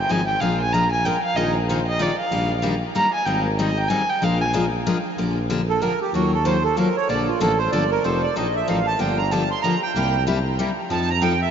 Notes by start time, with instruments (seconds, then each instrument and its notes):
Already playing: violin G5
0.09 tuba G#1, steel-string acoustic guitar F3 C4 D#4 G#4, violin G#5
0.27 violin G5
0.40 tuba A#1, steel-string acoustic guitar F3 G#3 D4 F4 A#4, violin F5
0.61 violin G#5
0.73 steel-string acoustic guitar F3 G#3 D4 F4 A#4, violin A#5
0.92 violin G#5
1.05 steel-string acoustic guitar F3 G#3 D4 F4 A#4, violin G5
1.24 violin F5
1.35 tuba A#1, steel-string acoustic guitar D#3 G#3 D#4 F4 A#4, violin D#5
1.56 violin G#4
1.68 steel-string acoustic guitar D#3 G#3 D#4 F4 A#4, violin C5
1.87 violin D#5
1.99 steel-string acoustic guitar D#3 G#3 D#4 F4 A#4, violin D5
2.19 violin F5
2.31 tuba A#1, steel-string acoustic guitar D#3 G3 A#3 D4 G4
2.62 steel-string acoustic guitar D#3 G3 A#3 D4 G4
2.95 steel-string acoustic guitar D#3 G3 A#3 D4 G4, violin A#5
3.14 violin G#5
3.26 tuba G#1, steel-string acoustic guitar D#3 G3 C4 D#4 G#4, violin G5
3.44 violin A#4
3.57 steel-string acoustic guitar D#3 G3 C4 D#4 G#4, violin D#5
3.77 violin G5
3.88 steel-string acoustic guitar D#3 G3 C4 D#4 G#4, violin G#5
4.09 violin G5
4.22 tuba A#1, steel-string acoustic guitar F3 G#3 D4 F4 A#4, violin F5
4.41 violin G#5
4.53 steel-string acoustic guitar F3 G#3 D4 F4 A#4
4.87 steel-string acoustic guitar F3 G#3 D4 F4 A#4
5.18 tuba A#1, steel-string acoustic guitar D3 F3 A#3 D4 G4
5.50 steel-string acoustic guitar D3 F3 A#3 D4 G4
5.69 accordion A4
5.82 steel-string acoustic guitar D3 F3 A#3 D4 G4, accordion A#4
6.02 accordion G4
6.12 tuba D#2, steel-string acoustic guitar D#3 F#3 A#3 F4, accordion F#4
6.34 accordion A4
6.45 steel-string acoustic guitar D#3 F#3 A#3 F4, accordion C5
6.64 accordion A4
6.77 steel-string acoustic guitar D#3 F#3 A#3 F4, accordion A#4
6.96 accordion C#5
7.08 tuba A#1, steel-string acoustic guitar D3 F3 A#3 D4 A4, accordion D5
7.28 accordion F4
7.40 tuba A1, steel-string acoustic guitar D3 F3 A#3 D4 A4, accordion A4
7.58 accordion C5
7.71 tuba G1, steel-string acoustic guitar D3 F3 A#3 D4 A4, accordion D5
7.91 accordion A#4
8.04 tuba F1, steel-string acoustic guitar F3 C4 D#4 A4, accordion C5
8.23 accordion D5
8.36 tuba A#1, steel-string acoustic guitar F3 C4 D#4 A4, accordion D#5
8.56 accordion E5
8.68 tuba A1, steel-string acoustic guitar F3 C4 D#4 A4, accordion F5
8.87 accordion A5
8.99 tuba G1, steel-string acoustic guitar D3 F3 A#3 D4 G4, accordion G5
9.18 accordion A#5
9.31 steel-string acoustic guitar D3 F3 A#3 D4 G4, accordion A5
9.51 accordion C6
9.62 steel-string acoustic guitar D3 F3 A#3 D4 G4, accordion A#5
9.83 accordion G5
9.95 tuba C2, steel-string acoustic guitar C3 G3 A#3 E4 G4
10.27 steel-string acoustic guitar C3 G3 A#3 E4 G4
10.59 steel-string acoustic guitar C3 G3 A#3 E4 G4
10.90 tuba F2, steel-string acoustic guitar F3 C4 D#4 A4, accordion A5
11.10 accordion A#5
11.22 steel-string acoustic guitar F3 C4 D#4 A4, accordion G5
11.41 accordion E5